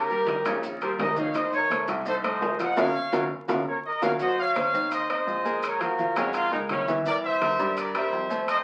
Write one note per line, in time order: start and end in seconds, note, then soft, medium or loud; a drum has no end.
0.00 0.40 D#2 medium
0.00 0.61 G4 medium
0.00 0.60 A#4 loud
0.09 0.39 G3 medium
0.09 0.39 G4 medium
0.09 0.40 A#4 medium
0.09 high conga soft
0.09 maracas soft
0.27 high conga loud
0.27 high timbale medium
0.27 low timbale medium
0.27 maracas soft
0.45 0.95 A#1 medium
0.45 0.75 C#3 medium
0.45 0.75 C#4 medium
0.45 0.75 C#5 medium
0.45 high conga soft
0.45 low conga medium
0.45 high timbale medium
0.45 maracas medium
0.63 high conga soft
0.63 low conga medium
0.63 maracas medium
0.81 1.11 G3 medium
0.81 1.11 G4 medium
0.81 0.91 G#4 medium
0.81 1.11 A#4 medium
0.81 0.90 C5 medium
0.81 high conga soft
0.81 high timbale medium
0.81 maracas soft
0.98 1.82 F1 medium
0.98 1.17 A#4 medium
0.98 1.16 D#5 medium
0.98 high conga medium
0.98 high timbale medium
0.98 low timbale medium
0.98 maracas soft
1.16 1.32 D#3 medium
1.16 1.32 D#4 medium
1.16 1.35 C#5 medium
1.16 1.32 D#5 medium
1.16 1.34 F5 medium
1.16 high conga medium
1.16 maracas medium
1.34 1.64 D#3 medium
1.34 1.64 D#4 medium
1.34 1.53 C5 medium
1.34 1.53 D#5 loud
1.34 1.65 D#5 medium
1.34 high conga soft
1.34 high timbale medium
1.34 maracas medium
1.53 1.86 A#4 medium
1.53 1.86 C#5 loud
1.53 high conga soft
1.53 maracas soft
1.70 2.00 A3 medium
1.70 2.00 A4 medium
1.70 2.00 C5 medium
1.70 high conga medium
1.70 high timbale medium
1.70 low timbale medium
1.70 maracas soft
1.87 2.38 C2 medium
1.87 high conga soft
1.87 high timbale medium
1.87 maracas medium
2.05 2.20 D#3 medium
2.05 2.20 D#4 medium
2.05 2.15 A4 medium
2.05 2.15 C5 loud
2.05 2.21 D#5 medium
2.05 high conga soft
2.05 maracas medium
2.23 2.53 A3 medium
2.23 2.53 A4 medium
2.23 2.53 C5 medium
2.23 2.58 C5 medium
2.23 2.57 D#5 medium
2.23 high conga soft
2.23 high timbale medium
2.23 maracas soft
2.41 2.75 F#1 medium
2.41 high conga soft
2.41 low timbale medium
2.41 maracas soft
2.59 2.74 F3 medium
2.59 2.74 F4 medium
2.59 2.77 D#5 medium
2.59 2.74 F5 medium
2.59 2.77 F#5 loud
2.59 high timbale medium
2.59 maracas medium
2.77 2.90 F#1 medium
2.77 2.89 F4 medium
2.77 2.89 F#4 loud
2.77 2.89 A#4 loud
2.77 3.22 C#5 medium
2.77 3.22 F5 loud
2.77 high conga medium
2.77 high timbale loud
2.77 maracas medium
3.12 3.26 F#1 loud
3.12 3.24 F4 loud
3.12 3.24 F#4 loud
3.12 3.24 A#4 medium
3.12 high conga medium
3.12 high timbale medium
3.12 maracas loud
3.48 3.62 F#1 medium
3.48 3.60 F4 medium
3.48 3.60 F#4 medium
3.48 3.60 A#4 medium
3.48 high conga loud
3.48 high timbale loud
3.48 maracas medium
3.68 3.76 A#4 soft
3.68 3.77 C#5 medium
3.86 4.02 A#4 medium
3.86 4.02 D#5 medium
4.02 4.15 F#1 medium
4.02 4.13 F4 loud
4.02 4.14 F#4 medium
4.02 4.14 A#4 loud
4.02 4.12 C#5 medium
4.02 4.11 F5 medium
4.02 high conga loud
4.02 high timbale medium
4.02 maracas loud
4.19 4.49 F#3 medium
4.19 4.49 F#4 medium
4.19 4.38 C5 medium
4.19 4.38 D#5 loud
4.19 4.49 F#5 medium
4.19 high conga soft
4.19 maracas medium
4.38 4.89 C#5 medium
4.38 4.89 F5 loud
4.38 high conga soft
4.38 maracas soft
4.55 4.70 C4 medium
4.55 4.70 C5 medium
4.55 4.70 D#5 medium
4.55 high conga loud
4.55 high timbale medium
4.55 maracas soft
4.73 5.23 D#2 medium
4.73 5.03 C4 medium
4.73 5.03 C5 medium
4.73 5.03 D#5 medium
4.73 high conga soft
4.73 maracas medium
4.91 5.09 C5 medium
4.91 5.09 D#5 loud
4.91 high conga soft
4.91 high timbale medium
4.91 maracas medium
5.10 5.39 C4 medium
5.10 5.39 C5 medium
5.10 5.60 C5 medium
5.10 5.39 D#5 medium
5.10 5.60 D#5 medium
5.10 high conga soft
5.10 high timbale medium
5.10 maracas soft
5.27 6.10 A#1 medium
5.27 high conga soft
5.27 maracas soft
5.45 5.74 G#3 medium
5.45 5.74 G#4 medium
5.45 5.74 A#4 medium
5.45 high conga soft
5.45 maracas medium
5.63 5.80 A#4 medium
5.63 5.82 C#5 loud
5.63 high conga soft
5.63 high timbale medium
5.63 maracas medium
5.80 5.95 F3 medium
5.80 5.95 F4 medium
5.80 6.52 F#4 medium
5.80 6.52 A#4 medium
5.80 5.96 F5 medium
5.80 high conga soft
5.80 high timbale medium
5.80 maracas soft
5.99 6.13 F3 medium
5.99 6.13 F4 medium
5.99 6.13 F5 medium
5.99 high conga medium
5.99 maracas soft
6.16 6.49 F2 medium
6.16 6.46 G#3 medium
6.16 6.33 C#4 medium
6.16 6.46 G#4 medium
6.16 6.46 F5 medium
6.16 high conga soft
6.16 low conga medium
6.16 high timbale loud
6.16 maracas medium
6.33 6.52 F4 loud
6.33 high conga soft
6.33 high timbale medium
6.33 maracas medium
6.52 6.69 C#2 medium
6.52 6.81 G#3 medium
6.52 6.60 D#4 medium
6.52 6.81 G#4 medium
6.52 6.81 A#4 medium
6.52 high conga soft
6.52 maracas soft
6.69 7.53 C2 medium
6.69 6.95 C#4 medium
6.69 high conga medium
6.69 high timbale medium
6.69 maracas soft
6.87 7.02 E3 medium
6.87 7.02 E4 medium
6.87 7.03 E5 medium
6.87 high conga loud
6.87 maracas medium
7.05 7.34 E3 medium
7.05 7.35 E4 medium
7.05 7.14 A#4 medium
7.05 7.14 D5 loud
7.05 7.35 E5 medium
7.05 high conga soft
7.05 maracas medium
7.24 7.74 C5 medium
7.24 7.74 E5 loud
7.24 high conga soft
7.24 maracas soft
7.41 7.56 G3 medium
7.41 7.56 G4 medium
7.41 7.56 A#4 medium
7.41 high conga loud
7.41 high timbale medium
7.41 maracas soft
7.59 8.09 G2 medium
7.59 7.88 G3 medium
7.59 7.88 G4 medium
7.59 7.88 A#4 medium
7.59 maracas medium
7.77 7.96 A#4 medium
7.77 7.95 D5 loud
7.77 high conga soft
7.77 high timbale medium
7.77 maracas loud
7.94 8.24 G3 medium
7.94 8.24 G4 medium
7.94 8.24 A#4 medium
7.94 8.45 C5 medium
7.94 8.45 E5 loud
7.94 high conga soft
7.94 high timbale medium
7.94 maracas soft
8.13 8.64 F2 medium
8.13 high conga soft
8.13 maracas soft
8.30 8.59 A3 medium
8.30 8.59 A4 medium
8.30 8.60 C5 medium
8.30 high conga soft
8.30 maracas medium
8.48 8.57 C5 medium
8.48 8.57 D#5 loud
8.48 high conga soft
8.48 high timbale medium
8.48 maracas medium